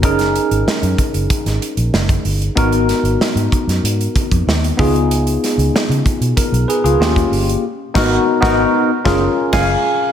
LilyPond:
<<
  \new Staff \with { instrumentName = "Tine electric piano" } { \time 4/4 \key fis \major \tempo 4 = 95 << { r1 | r1 | r2 ais'8 <gis' b'>16 <eis' gis'>8 r8. | r1 | } \\ { <cis' dis' gis' ais'>1 | <b dis' fis' ais'>2.~ <b dis' fis' ais'>8 <b dis' eis' gis'>8~ | <b dis' eis' gis'>2. <ais cis' eis' g'>4 | r8 <b dis' fis' ais'>8 r16 <b dis' fis' ais'>8 r8 <cis' eis' gis' ais'>8 r16 <eis'' gis''>8 r8 | } >> }
  \new Staff \with { instrumentName = "Fingered electric bass" } { \clef bass \time 4/4 \key fis \major fis,,8. gis,,16 r16 fis,16 r16 fis,,16 r16 gis,,16 r16 ais,,16 fis,,8 g,,8 | gis,,8. gis,,16 r16 gis,16 r16 fis,16 gis,8 r16 eis,16 dis,8 cis,8~ | cis,8. cis,16 r16 cis16 r16 b,16 r16 b,,16 r16 cis,16 dis,8 g,,8 | r8 gis,,8 r16 gis,,8 r8 fis,,8 r16 fis,,8 r8 | }
  \new DrumStaff \with { instrumentName = "Drums" } \drummode { \time 4/4 <hh bd>16 <hh sn>16 hh16 hh16 sn16 hh16 <hh bd>16 hh16 <hh bd>16 <hh sn>16 hh16 hh16 sn16 <hh bd>16 hho16 hh16 | <hh bd>16 hh16 <hh sn>16 hh16 sn16 hh16 <hh bd>16 <hh sn>16 hh16 hh16 <hh bd>16 <hh bd>16 sn16 hh16 <hho bd>16 hh16 | hh16 hh16 <hh sn>16 hh16 sn16 hh16 <hh bd>16 hh16 <hh bd>16 hh16 hh16 hh16 sn16 <hh bd>16 hho16 hh16 | r8 <cymc bd sn>8 r16 <bd sn>8. r16 <bd sn>8. <cymc bd sn>4 | }
>>